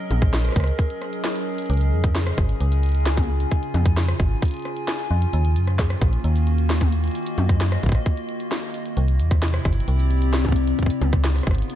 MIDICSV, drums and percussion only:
0, 0, Header, 1, 2, 480
1, 0, Start_track
1, 0, Tempo, 454545
1, 1793, Time_signature, 4, 2, 24, 8
1, 12410, End_track
2, 0, Start_track
2, 0, Title_t, "Drums"
2, 113, Note_on_c, 9, 42, 73
2, 113, Note_on_c, 9, 48, 82
2, 219, Note_off_c, 9, 42, 0
2, 219, Note_off_c, 9, 48, 0
2, 232, Note_on_c, 9, 36, 107
2, 233, Note_on_c, 9, 37, 53
2, 233, Note_on_c, 9, 42, 41
2, 338, Note_off_c, 9, 36, 0
2, 338, Note_off_c, 9, 37, 0
2, 338, Note_off_c, 9, 42, 0
2, 353, Note_on_c, 9, 38, 124
2, 353, Note_on_c, 9, 42, 96
2, 459, Note_off_c, 9, 38, 0
2, 459, Note_off_c, 9, 42, 0
2, 473, Note_on_c, 9, 37, 35
2, 473, Note_on_c, 9, 42, 43
2, 513, Note_off_c, 9, 37, 0
2, 513, Note_on_c, 9, 37, 41
2, 553, Note_off_c, 9, 37, 0
2, 553, Note_on_c, 9, 37, 49
2, 578, Note_off_c, 9, 42, 0
2, 592, Note_on_c, 9, 36, 116
2, 593, Note_on_c, 9, 42, 77
2, 633, Note_off_c, 9, 37, 0
2, 633, Note_on_c, 9, 37, 67
2, 673, Note_off_c, 9, 37, 0
2, 673, Note_on_c, 9, 37, 72
2, 698, Note_off_c, 9, 36, 0
2, 699, Note_off_c, 9, 42, 0
2, 713, Note_on_c, 9, 42, 42
2, 779, Note_off_c, 9, 37, 0
2, 819, Note_off_c, 9, 42, 0
2, 832, Note_on_c, 9, 36, 111
2, 833, Note_on_c, 9, 42, 100
2, 938, Note_off_c, 9, 36, 0
2, 939, Note_off_c, 9, 42, 0
2, 953, Note_on_c, 9, 42, 39
2, 1059, Note_off_c, 9, 42, 0
2, 1073, Note_on_c, 9, 37, 54
2, 1073, Note_on_c, 9, 42, 39
2, 1179, Note_off_c, 9, 37, 0
2, 1179, Note_off_c, 9, 42, 0
2, 1193, Note_on_c, 9, 42, 44
2, 1299, Note_off_c, 9, 42, 0
2, 1313, Note_on_c, 9, 38, 118
2, 1418, Note_off_c, 9, 38, 0
2, 1433, Note_on_c, 9, 42, 44
2, 1539, Note_off_c, 9, 42, 0
2, 1673, Note_on_c, 9, 42, 70
2, 1713, Note_off_c, 9, 42, 0
2, 1713, Note_on_c, 9, 42, 23
2, 1753, Note_off_c, 9, 42, 0
2, 1753, Note_on_c, 9, 42, 27
2, 1793, Note_off_c, 9, 42, 0
2, 1793, Note_on_c, 9, 42, 92
2, 1833, Note_off_c, 9, 42, 0
2, 1833, Note_on_c, 9, 42, 30
2, 1873, Note_off_c, 9, 42, 0
2, 1873, Note_on_c, 9, 42, 34
2, 1913, Note_off_c, 9, 42, 0
2, 1913, Note_on_c, 9, 42, 42
2, 2019, Note_off_c, 9, 42, 0
2, 2152, Note_on_c, 9, 36, 107
2, 2153, Note_on_c, 9, 37, 50
2, 2153, Note_on_c, 9, 42, 39
2, 2258, Note_off_c, 9, 36, 0
2, 2258, Note_off_c, 9, 37, 0
2, 2258, Note_off_c, 9, 42, 0
2, 2273, Note_on_c, 9, 38, 120
2, 2273, Note_on_c, 9, 42, 93
2, 2379, Note_off_c, 9, 38, 0
2, 2379, Note_off_c, 9, 42, 0
2, 2392, Note_on_c, 9, 37, 77
2, 2392, Note_on_c, 9, 42, 37
2, 2498, Note_off_c, 9, 37, 0
2, 2498, Note_off_c, 9, 42, 0
2, 2512, Note_on_c, 9, 36, 116
2, 2512, Note_on_c, 9, 37, 62
2, 2512, Note_on_c, 9, 42, 72
2, 2618, Note_off_c, 9, 36, 0
2, 2618, Note_off_c, 9, 37, 0
2, 2618, Note_off_c, 9, 42, 0
2, 2632, Note_on_c, 9, 42, 37
2, 2738, Note_off_c, 9, 42, 0
2, 2752, Note_on_c, 9, 42, 96
2, 2857, Note_off_c, 9, 42, 0
2, 2872, Note_on_c, 9, 42, 39
2, 2872, Note_on_c, 9, 82, 76
2, 2978, Note_off_c, 9, 42, 0
2, 2978, Note_off_c, 9, 82, 0
2, 2992, Note_on_c, 9, 42, 38
2, 3022, Note_off_c, 9, 42, 0
2, 3022, Note_on_c, 9, 42, 31
2, 3052, Note_off_c, 9, 42, 0
2, 3052, Note_on_c, 9, 42, 25
2, 3082, Note_off_c, 9, 42, 0
2, 3082, Note_on_c, 9, 42, 20
2, 3112, Note_off_c, 9, 42, 0
2, 3112, Note_on_c, 9, 42, 40
2, 3172, Note_off_c, 9, 42, 0
2, 3172, Note_on_c, 9, 42, 11
2, 3203, Note_off_c, 9, 42, 0
2, 3203, Note_on_c, 9, 42, 9
2, 3233, Note_off_c, 9, 42, 0
2, 3233, Note_on_c, 9, 38, 127
2, 3233, Note_on_c, 9, 42, 98
2, 3338, Note_off_c, 9, 38, 0
2, 3338, Note_off_c, 9, 42, 0
2, 3352, Note_on_c, 9, 36, 87
2, 3352, Note_on_c, 9, 42, 43
2, 3352, Note_on_c, 9, 48, 88
2, 3458, Note_off_c, 9, 36, 0
2, 3458, Note_off_c, 9, 42, 0
2, 3458, Note_off_c, 9, 48, 0
2, 3593, Note_on_c, 9, 42, 43
2, 3699, Note_off_c, 9, 42, 0
2, 3712, Note_on_c, 9, 36, 90
2, 3712, Note_on_c, 9, 42, 90
2, 3818, Note_off_c, 9, 36, 0
2, 3818, Note_off_c, 9, 42, 0
2, 3832, Note_on_c, 9, 42, 38
2, 3938, Note_off_c, 9, 42, 0
2, 3953, Note_on_c, 9, 42, 70
2, 3953, Note_on_c, 9, 48, 87
2, 4059, Note_off_c, 9, 42, 0
2, 4059, Note_off_c, 9, 48, 0
2, 4072, Note_on_c, 9, 36, 106
2, 4073, Note_on_c, 9, 42, 39
2, 4177, Note_off_c, 9, 36, 0
2, 4178, Note_off_c, 9, 42, 0
2, 4193, Note_on_c, 9, 38, 127
2, 4193, Note_on_c, 9, 42, 91
2, 4298, Note_off_c, 9, 38, 0
2, 4298, Note_off_c, 9, 42, 0
2, 4313, Note_on_c, 9, 37, 74
2, 4313, Note_on_c, 9, 42, 37
2, 4419, Note_off_c, 9, 37, 0
2, 4419, Note_off_c, 9, 42, 0
2, 4432, Note_on_c, 9, 36, 118
2, 4433, Note_on_c, 9, 42, 68
2, 4537, Note_off_c, 9, 36, 0
2, 4539, Note_off_c, 9, 42, 0
2, 4672, Note_on_c, 9, 36, 112
2, 4673, Note_on_c, 9, 42, 87
2, 4703, Note_off_c, 9, 42, 0
2, 4703, Note_on_c, 9, 42, 72
2, 4763, Note_off_c, 9, 42, 0
2, 4763, Note_on_c, 9, 42, 51
2, 4777, Note_off_c, 9, 36, 0
2, 4793, Note_off_c, 9, 42, 0
2, 4793, Note_on_c, 9, 42, 37
2, 4823, Note_off_c, 9, 42, 0
2, 4823, Note_on_c, 9, 42, 29
2, 4853, Note_off_c, 9, 42, 0
2, 4853, Note_on_c, 9, 42, 26
2, 4883, Note_off_c, 9, 42, 0
2, 4883, Note_on_c, 9, 42, 20
2, 4913, Note_off_c, 9, 42, 0
2, 4913, Note_on_c, 9, 37, 54
2, 4913, Note_on_c, 9, 42, 38
2, 5019, Note_off_c, 9, 37, 0
2, 5019, Note_off_c, 9, 42, 0
2, 5033, Note_on_c, 9, 42, 39
2, 5139, Note_off_c, 9, 42, 0
2, 5153, Note_on_c, 9, 38, 123
2, 5153, Note_on_c, 9, 42, 91
2, 5258, Note_off_c, 9, 38, 0
2, 5258, Note_off_c, 9, 42, 0
2, 5273, Note_on_c, 9, 42, 39
2, 5378, Note_off_c, 9, 42, 0
2, 5513, Note_on_c, 9, 42, 40
2, 5619, Note_off_c, 9, 42, 0
2, 5633, Note_on_c, 9, 42, 84
2, 5738, Note_off_c, 9, 42, 0
2, 5753, Note_on_c, 9, 42, 39
2, 5859, Note_off_c, 9, 42, 0
2, 5873, Note_on_c, 9, 42, 67
2, 5978, Note_off_c, 9, 42, 0
2, 5992, Note_on_c, 9, 37, 50
2, 5992, Note_on_c, 9, 42, 38
2, 6098, Note_off_c, 9, 37, 0
2, 6098, Note_off_c, 9, 42, 0
2, 6112, Note_on_c, 9, 36, 107
2, 6113, Note_on_c, 9, 38, 116
2, 6113, Note_on_c, 9, 42, 89
2, 6218, Note_off_c, 9, 36, 0
2, 6219, Note_off_c, 9, 38, 0
2, 6219, Note_off_c, 9, 42, 0
2, 6233, Note_on_c, 9, 37, 71
2, 6233, Note_on_c, 9, 42, 36
2, 6338, Note_off_c, 9, 37, 0
2, 6338, Note_off_c, 9, 42, 0
2, 6352, Note_on_c, 9, 36, 115
2, 6353, Note_on_c, 9, 37, 64
2, 6353, Note_on_c, 9, 42, 66
2, 6458, Note_off_c, 9, 36, 0
2, 6459, Note_off_c, 9, 37, 0
2, 6459, Note_off_c, 9, 42, 0
2, 6473, Note_on_c, 9, 42, 35
2, 6579, Note_off_c, 9, 42, 0
2, 6593, Note_on_c, 9, 42, 89
2, 6699, Note_off_c, 9, 42, 0
2, 6713, Note_on_c, 9, 42, 37
2, 6713, Note_on_c, 9, 82, 76
2, 6819, Note_off_c, 9, 42, 0
2, 6819, Note_off_c, 9, 82, 0
2, 6833, Note_on_c, 9, 42, 36
2, 6938, Note_off_c, 9, 42, 0
2, 6953, Note_on_c, 9, 42, 38
2, 7059, Note_off_c, 9, 42, 0
2, 7073, Note_on_c, 9, 38, 123
2, 7073, Note_on_c, 9, 42, 89
2, 7178, Note_off_c, 9, 38, 0
2, 7178, Note_off_c, 9, 42, 0
2, 7193, Note_on_c, 9, 36, 86
2, 7193, Note_on_c, 9, 42, 37
2, 7193, Note_on_c, 9, 48, 101
2, 7193, Note_on_c, 9, 82, 86
2, 7298, Note_off_c, 9, 36, 0
2, 7299, Note_off_c, 9, 42, 0
2, 7299, Note_off_c, 9, 48, 0
2, 7299, Note_off_c, 9, 82, 0
2, 7313, Note_on_c, 9, 42, 66
2, 7418, Note_off_c, 9, 42, 0
2, 7433, Note_on_c, 9, 42, 37
2, 7473, Note_off_c, 9, 42, 0
2, 7473, Note_on_c, 9, 42, 30
2, 7513, Note_off_c, 9, 42, 0
2, 7513, Note_on_c, 9, 42, 26
2, 7553, Note_off_c, 9, 42, 0
2, 7553, Note_on_c, 9, 42, 88
2, 7592, Note_off_c, 9, 42, 0
2, 7592, Note_on_c, 9, 42, 16
2, 7633, Note_off_c, 9, 42, 0
2, 7633, Note_on_c, 9, 42, 13
2, 7672, Note_off_c, 9, 42, 0
2, 7672, Note_on_c, 9, 42, 40
2, 7778, Note_off_c, 9, 42, 0
2, 7792, Note_on_c, 9, 42, 65
2, 7792, Note_on_c, 9, 48, 88
2, 7898, Note_off_c, 9, 42, 0
2, 7898, Note_off_c, 9, 48, 0
2, 7912, Note_on_c, 9, 37, 54
2, 7912, Note_on_c, 9, 42, 38
2, 7913, Note_on_c, 9, 36, 102
2, 8018, Note_off_c, 9, 36, 0
2, 8018, Note_off_c, 9, 37, 0
2, 8018, Note_off_c, 9, 42, 0
2, 8032, Note_on_c, 9, 38, 115
2, 8032, Note_on_c, 9, 42, 89
2, 8137, Note_off_c, 9, 38, 0
2, 8137, Note_off_c, 9, 42, 0
2, 8152, Note_on_c, 9, 37, 78
2, 8152, Note_on_c, 9, 42, 36
2, 8258, Note_off_c, 9, 37, 0
2, 8258, Note_off_c, 9, 42, 0
2, 8272, Note_on_c, 9, 42, 66
2, 8273, Note_on_c, 9, 36, 49
2, 8303, Note_off_c, 9, 36, 0
2, 8303, Note_on_c, 9, 36, 62
2, 8333, Note_off_c, 9, 36, 0
2, 8333, Note_on_c, 9, 36, 75
2, 8363, Note_off_c, 9, 36, 0
2, 8363, Note_on_c, 9, 36, 89
2, 8377, Note_off_c, 9, 42, 0
2, 8392, Note_on_c, 9, 37, 58
2, 8392, Note_on_c, 9, 42, 36
2, 8468, Note_off_c, 9, 36, 0
2, 8498, Note_off_c, 9, 37, 0
2, 8498, Note_off_c, 9, 42, 0
2, 8512, Note_on_c, 9, 42, 91
2, 8513, Note_on_c, 9, 36, 108
2, 8617, Note_off_c, 9, 42, 0
2, 8618, Note_off_c, 9, 36, 0
2, 8632, Note_on_c, 9, 42, 38
2, 8738, Note_off_c, 9, 42, 0
2, 8752, Note_on_c, 9, 42, 37
2, 8858, Note_off_c, 9, 42, 0
2, 8872, Note_on_c, 9, 42, 38
2, 8978, Note_off_c, 9, 42, 0
2, 8992, Note_on_c, 9, 38, 114
2, 8992, Note_on_c, 9, 42, 88
2, 9097, Note_off_c, 9, 38, 0
2, 9097, Note_off_c, 9, 42, 0
2, 9232, Note_on_c, 9, 42, 66
2, 9338, Note_off_c, 9, 42, 0
2, 9352, Note_on_c, 9, 42, 38
2, 9458, Note_off_c, 9, 42, 0
2, 9472, Note_on_c, 9, 42, 90
2, 9578, Note_off_c, 9, 42, 0
2, 9593, Note_on_c, 9, 42, 41
2, 9698, Note_off_c, 9, 42, 0
2, 9712, Note_on_c, 9, 42, 67
2, 9817, Note_off_c, 9, 42, 0
2, 9832, Note_on_c, 9, 37, 57
2, 9832, Note_on_c, 9, 42, 40
2, 9833, Note_on_c, 9, 36, 98
2, 9938, Note_off_c, 9, 36, 0
2, 9938, Note_off_c, 9, 37, 0
2, 9938, Note_off_c, 9, 42, 0
2, 9952, Note_on_c, 9, 38, 115
2, 9952, Note_on_c, 9, 42, 89
2, 10012, Note_off_c, 9, 42, 0
2, 10012, Note_on_c, 9, 42, 39
2, 10057, Note_off_c, 9, 38, 0
2, 10072, Note_on_c, 9, 37, 78
2, 10118, Note_off_c, 9, 42, 0
2, 10177, Note_off_c, 9, 37, 0
2, 10192, Note_on_c, 9, 37, 65
2, 10192, Note_on_c, 9, 42, 66
2, 10193, Note_on_c, 9, 36, 105
2, 10273, Note_off_c, 9, 42, 0
2, 10273, Note_on_c, 9, 42, 51
2, 10298, Note_off_c, 9, 36, 0
2, 10298, Note_off_c, 9, 37, 0
2, 10353, Note_off_c, 9, 42, 0
2, 10353, Note_on_c, 9, 42, 40
2, 10433, Note_off_c, 9, 42, 0
2, 10433, Note_on_c, 9, 42, 89
2, 10538, Note_off_c, 9, 42, 0
2, 10553, Note_on_c, 9, 82, 77
2, 10658, Note_off_c, 9, 82, 0
2, 10672, Note_on_c, 9, 42, 36
2, 10778, Note_off_c, 9, 42, 0
2, 10792, Note_on_c, 9, 42, 39
2, 10898, Note_off_c, 9, 42, 0
2, 10912, Note_on_c, 9, 38, 120
2, 10912, Note_on_c, 9, 42, 92
2, 11018, Note_off_c, 9, 38, 0
2, 11018, Note_off_c, 9, 42, 0
2, 11032, Note_on_c, 9, 36, 35
2, 11033, Note_on_c, 9, 42, 42
2, 11033, Note_on_c, 9, 48, 99
2, 11033, Note_on_c, 9, 82, 84
2, 11072, Note_off_c, 9, 36, 0
2, 11072, Note_on_c, 9, 36, 49
2, 11112, Note_off_c, 9, 36, 0
2, 11112, Note_on_c, 9, 36, 63
2, 11138, Note_off_c, 9, 42, 0
2, 11138, Note_off_c, 9, 48, 0
2, 11138, Note_off_c, 9, 82, 0
2, 11152, Note_on_c, 9, 42, 66
2, 11218, Note_off_c, 9, 36, 0
2, 11258, Note_off_c, 9, 42, 0
2, 11273, Note_on_c, 9, 42, 39
2, 11379, Note_off_c, 9, 42, 0
2, 11392, Note_on_c, 9, 36, 38
2, 11393, Note_on_c, 9, 42, 86
2, 11432, Note_off_c, 9, 36, 0
2, 11432, Note_on_c, 9, 36, 51
2, 11472, Note_off_c, 9, 36, 0
2, 11472, Note_on_c, 9, 36, 68
2, 11498, Note_off_c, 9, 42, 0
2, 11512, Note_on_c, 9, 42, 40
2, 11578, Note_off_c, 9, 36, 0
2, 11618, Note_off_c, 9, 42, 0
2, 11633, Note_on_c, 9, 42, 73
2, 11633, Note_on_c, 9, 48, 88
2, 11738, Note_off_c, 9, 42, 0
2, 11738, Note_off_c, 9, 48, 0
2, 11752, Note_on_c, 9, 36, 99
2, 11753, Note_on_c, 9, 37, 57
2, 11753, Note_on_c, 9, 42, 38
2, 11858, Note_off_c, 9, 36, 0
2, 11858, Note_off_c, 9, 37, 0
2, 11858, Note_off_c, 9, 42, 0
2, 11872, Note_on_c, 9, 38, 120
2, 11872, Note_on_c, 9, 42, 96
2, 11978, Note_off_c, 9, 38, 0
2, 11978, Note_off_c, 9, 42, 0
2, 11993, Note_on_c, 9, 37, 36
2, 11993, Note_on_c, 9, 42, 38
2, 12023, Note_off_c, 9, 42, 0
2, 12023, Note_on_c, 9, 42, 30
2, 12053, Note_off_c, 9, 42, 0
2, 12053, Note_on_c, 9, 42, 25
2, 12073, Note_off_c, 9, 37, 0
2, 12073, Note_on_c, 9, 37, 51
2, 12083, Note_off_c, 9, 42, 0
2, 12083, Note_on_c, 9, 42, 20
2, 12112, Note_on_c, 9, 36, 116
2, 12113, Note_off_c, 9, 42, 0
2, 12113, Note_on_c, 9, 42, 66
2, 12143, Note_off_c, 9, 42, 0
2, 12143, Note_on_c, 9, 42, 14
2, 12154, Note_off_c, 9, 37, 0
2, 12154, Note_on_c, 9, 37, 69
2, 12174, Note_off_c, 9, 42, 0
2, 12174, Note_on_c, 9, 42, 12
2, 12194, Note_off_c, 9, 42, 0
2, 12194, Note_on_c, 9, 42, 57
2, 12203, Note_off_c, 9, 42, 0
2, 12203, Note_on_c, 9, 42, 10
2, 12218, Note_off_c, 9, 36, 0
2, 12234, Note_off_c, 9, 42, 0
2, 12234, Note_on_c, 9, 42, 40
2, 12259, Note_off_c, 9, 37, 0
2, 12274, Note_off_c, 9, 42, 0
2, 12274, Note_on_c, 9, 42, 43
2, 12353, Note_off_c, 9, 42, 0
2, 12353, Note_on_c, 9, 42, 91
2, 12410, Note_off_c, 9, 42, 0
2, 12410, End_track
0, 0, End_of_file